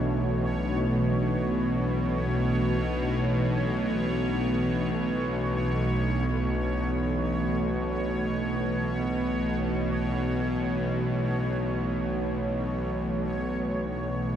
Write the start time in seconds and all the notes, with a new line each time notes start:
Already playing: B1 B2 E3 A3 D4 F#4 C#5